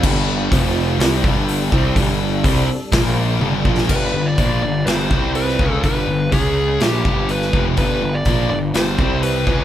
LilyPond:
<<
  \new Staff \with { instrumentName = "Lead electric guitar" } { \time 4/4 \key c \major \tempo 4 = 124 r1 | r1 | b'8. d''8. d''8 c''4 b'4 | b'4 gis'4 g'4 b'8. r16 |
b'8. d''8. d''8 c''4 b'4 | }
  \new Staff \with { instrumentName = "Tonewheel organ" } { \time 4/4 \key c \major <g d' a'>4 <f c' g'>4 <g d' a'>2~ | <g d' a'>2 <bes f' c''>4 <g d' a'>4 | r1 | r1 |
r1 | }
  \new Staff \with { instrumentName = "Distorted electric guitar" } { \clef bass \time 4/4 \key c \major <g, d g>4 <f, c f>4 <c g c'>8 <g, d g>4 <c g c'>8 | <g, d g>4 <c g c'>8 r8 <bes, f bes>4 <g, d g>8 <bes, f bes>8 | <g, d g>8 <g, d>8 <bes, f bes>8 <g, d>8 <g, d g>8 <c g c'>4 <cis aes cis'>8 | <g, d g>8 <g, d>8 <cis gis cis'>4 <bes, f bes>8 <g, d g>4 <f, c f>8 |
<g, d g>8 <g, d>8 <bes, f bes>8 <g, d>8 <g, d g>8 <c g c'>4 <cis aes cis'>8 | }
  \new Staff \with { instrumentName = "Distorted electric guitar" } { \clef bass \time 4/4 \key c \major <g, d g>4 <f, c f>4 <c g c'>8 <g, d g>4 <c g c'>8 | <g, d g>4 <c g c'>8 r8 <bes, f bes>4 <g, d g>8 <bes, f bes>8 | <g, d g>8 <g, d>8 <bes, f bes>8 <g, d>8 <g, d g>8 <c g c'>4 <cis aes cis'>8 | <g, d g>8 <g, d>8 <cis gis cis'>4 <bes, f bes>8 <g, d g>4 <f, c f>8 |
<g, d g>8 <g, d>8 <bes, f bes>8 <g, d>8 <g, d g>8 <c g c'>4 <cis aes cis'>8 | }
  \new Staff \with { instrumentName = "Picked electric bass" } { \clef bass \time 4/4 \key c \major g,,4 f,,4 c,8 g,,4 c,8 | g,,4 c,8 r8 bes,,4 g,,8 bes,,8 | g,,8 g,,8 bes,,8 g,,8 g,,8 c,4 cis,8 | g,,8 g,,8 cis,4 bes,,8 g,,4 f,,8 |
g,,8 g,,8 bes,,8 g,,8 g,,8 c,4 cis,8 | }
  \new DrumStaff \with { instrumentName = "Drums" } \drummode { \time 4/4 <cymc bd>4 <hho bd>4 <hho sn>8 bd8 hho8 bd8 | <hho bd>4 <hho bd>4 <hho bd sn>4 tommh8 bd16 sn16 | <cymc bd>4 <hho bd>4 <hho sn>8 bd8 hho16 sn16 bd8 | <hho bd>4 <hho bd>4 <hho sn>8 bd8 hho16 sn16 bd8 |
<hho bd>4 <hho bd>4 <hho sn>8 bd8 hho8 bd8 | }
>>